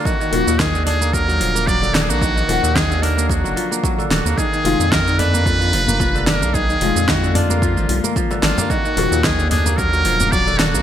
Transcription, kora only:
X:1
M:4/4
L:1/16
Q:"Swing 16ths" 1/4=111
K:Ebm
V:1 name="Kora" clef=bass
E, E, F, B,, E, =D, =D B, G, G, F, B, G, D, D B, | E, E, F, B,, E, =D, =D B, G, G, F, B, G, D, D B, | E, E, F, B,, E, =D, =D B, F, F, F, B, F, D, D B, | E, E, F, B,, E, =D, =D B, F, F, F, B, F, D, D B, |
E, E, F, B,, E, =D, =D B, G, G, F, B, G, D, D B, |]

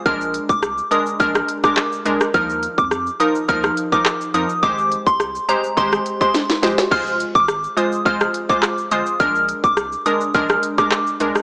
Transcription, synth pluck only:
X:1
M:4/4
L:1/16
Q:1/4=105
K:Bbmix
V:1 name="Synth pluck"
[A,DB]4 z2 [A,DB] z [A,DB]3 [A,DB] z2 [A,DB] z | [F,EB]4 z2 [F,EB] z [F,EB]3 [F,EB] z2 [F,EB] z | [A,Gc]4 z2 [A,Gc] z [A,Gc]3 [A,Gc] z2 [A,Gc] z | [A,Fc]4 z2 [A,Fc] z [A,Fc]3 [A,Fc] z2 [A,Fc] z |
[A,DB]4 z2 [A,DB] z [A,DB]3 [A,DB] z2 [A,DB] z |]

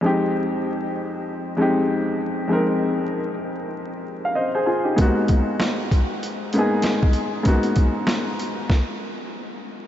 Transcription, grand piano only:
X:1
M:4/4
L:1/16
Q:"Swing 16ths" 1/4=97
K:Fm
V:1 name="Grand piano"
z16 | z8 z3 f [ce] [Ac] [FA] [EG]- | [EG] z12 z3 | z16 |]
V:2 name="Grand piano"
[F,,A,CEG]4 z6 [F,,A,CEG]4 z2 | [F,,A,CEB]4 z12 | [A,,B,_CE_G]4 z6 [A,,B,CEA]4 z2 | [A,,B,_CE_G]4 z12 |]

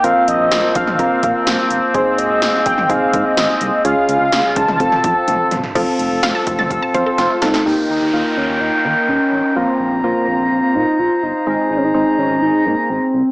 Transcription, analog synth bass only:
X:1
M:4/4
L:1/16
Q:1/4=126
K:Bbdor
V:1 name="Analog synth bass" clef=bass
B,,, z B,,, B,,, B,,, z B,,, B,,, B,,, z B,, z B,,, z G,,, z | A,,, z A,,, A,,, A,,, z A,,, A,,, A,,, z A,, z A,,, z C,, z | D,, z D,, D,, D,, z D,, D,, F,,, z F,, z F,,, z G,,, z | F,,, z F,,, F,,, F,,, z F,,, F,,, F,,, z F,, z F,,, z D,, z |
E,, z E,, E,, E,, z E,, E,, E,, z E, z E,, z A,,, z | B,,, z B,,, B,,, B,,, z B,,, B,,, B,,, z B,, z B,,, z G,,, z | A,,, z A,,, A,,, A,,, z A,,, A,,, A,,, z A,, z A,,, z C,, z |]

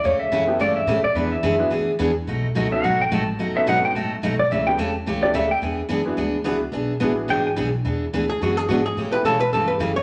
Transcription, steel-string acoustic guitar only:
X:1
M:4/4
L:1/8
Q:"Swing" 1/4=215
K:Emix
V:1 name="Steel-string acoustic guitar"
[C,E,A,C=G] z [C,E,A,CG] z [C,E,A,CG] z [C,E,A,CG] z | [E,B,DG] z [E,B,DG] z [E,B,DG] z [E,B,DG] z | [B,,F,A,^DF] z [B,,F,A,DF] z [B,,F,A,DF] z [B,,F,A,DF] z | [B,,F,A,^DF] z [B,,F,A,DF] z [B,,F,A,DF] z [B,,F,A,DF] z |
[C,E,A,C=G] z [C,E,A,CG] z [C,E,A,CG] z [C,E,A,CG] z | [E,B,DG] z [E,B,DG] z [E,B,DG] z [E,B,DG] z | [E,B,DG] z [E,B,DG] z [E,B,DG] z [E,B,DG] z | [E,B,DG] z [E,B,DG] z [E,B,DG] z [E,B,DG] z |
[C,E,A,C=G] z [C,E,A,CG] z [C,E,A,CG] z [C,E,A,CG] z |]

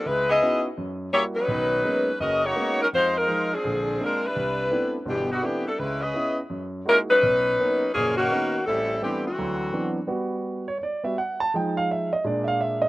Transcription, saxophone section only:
X:1
M:4/4
L:1/8
Q:"Swing" 1/4=168
K:Bphr
V:1 name="Saxophone section"
[^G,^DEB] [B,E^G^d]2 z3 [^A,E=G^c] [F,^C_EB]- | [F,^C_EB]4 [CF^A^d] [^A,^DF^c]2 [F,CDA] | [_A,_E=Fc] [A,EF_B]2 [=F,CD_A]3 [A,DFB] [G,D=E=B]- | [G,DEB]3 z [E,B,DG] [D,G,B,F] [E,B,DG] [G,DEA] |
[^G,^CEB] [C^GB_e]2 z3 [G,C=E^A] [F,C^DB]- | [F,^C^DB]4 [=F,^A,C_A] [^D,^A,C^F]3 | [G,CEA]2 [E,B,CG] [E,A,CF]4 z | z8 |
z8 |]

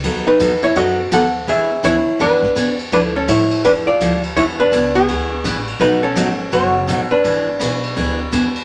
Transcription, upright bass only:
X:1
M:4/4
L:1/8
Q:"Swing" 1/4=167
K:Emix
V:1 name="Upright bass" clef=bass
^D,,2 E,,2 F,,2 D,,2 | E,,2 D,, z F,,2 E,,2 | D,,2 A,,2 =F,,2 D,,2 | E,,2 C,,2 D,,2 A,,,2 |
B,,,2 G,,,2 F,,,2 A,,, z | G,,,2 B,,,2 D,,2 E,,2 |]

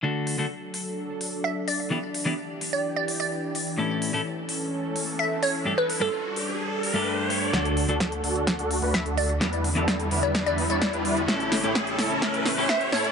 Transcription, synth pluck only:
X:1
M:4/4
L:1/16
Q:1/4=128
K:D
V:1 name="Synth pluck"
z12 e z d z | z6 z d z d z d4 z | z12 e z c z | z B z A3 z8 z2 |
z12 e z d z | z6 z d z d z d4 z | z12 e z c z |]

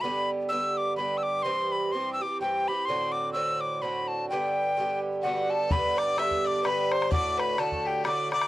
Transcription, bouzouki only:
X:1
M:3/4
L:1/8
Q:"Swing" 1/4=127
K:G
V:1 name="Bouzouki"
[G,,D,B,G]2 [G,,D,B,G]2 [G,,D,B,G]2 | [G,,E,CG]2 [G,,E,CG] [E,CG] [G,,E,CG] [E,CG] | [A,,D,CF]2 [A,,D,CF]2 [A,,D,CF]2 | [G,,D,B,G]2 [G,,D,B,G]2 [G,,D,B,G]2 |
[G,,D,B,G]2 [G,,D,B,G]2 [G,,D,B,G]2 | [A,,D,A,F]2 [A,,D,A,F]2 [A,,D,A,F] [D,A,F] |]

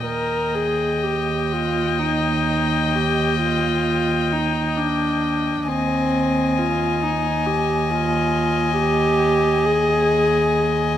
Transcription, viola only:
X:1
M:12/8
L:1/8
Q:3/8=44
K:Eb
V:1 name="Viola"
B A G F E2 G F2 E D2 | C2 F E G F2 G2 A3 |]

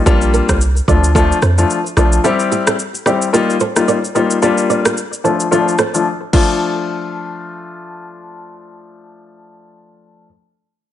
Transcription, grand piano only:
X:1
M:4/4
L:1/16
Q:"Swing 16ths" 1/4=110
K:Dm
V:1 name="Grand piano"
[G,B,DF]4 z2 [F,A,DF]2 [F,A,DF]2 z [F,A,DF] z2 [F,A,DF]2 | [G,CEG]4 z2 [G,CEG]2 [G,B,_EF]2 z [G,B,EF] z2 [G,B,EF]2 | [G,B,DF]4 z2 [F,A,DF]2 [F,A,DF]2 z [F,A,DF] z2 [F,A,DF]2- | [F,A,DF]16- |
[F,A,DF]16 |]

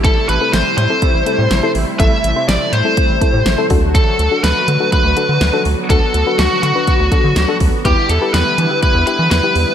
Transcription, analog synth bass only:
X:1
M:4/4
L:1/16
Q:1/4=123
K:Dmix
V:1 name="Analog synth bass" clef=bass
z2 A,,, z A,,, z A,, z2 A,,, z A,, A,,, z A,,, z | A,,, z A,,, z A,,, z A,, z2 A,,, z A,, A,,, z D,,2- | D,, z D,, z D,, z D, z2 D,, z D, D,, z D,, z | D,, z D,, z D,, z D, z2 D,, z D, D,, z D,, z |
E,, z E,, z E,, z E, z2 E,, z E, E,, z E,, z |]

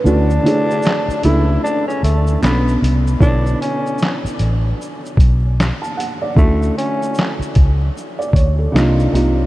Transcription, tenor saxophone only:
X:1
M:4/4
L:1/16
Q:"Swing 16ths" 1/4=76
K:Dlyd
V:1 name="Tenor saxophone"
D6 E2 D C A,2 B,2 z2 | D2 C3 z8 z3 | A,2 C3 z8 z3 |]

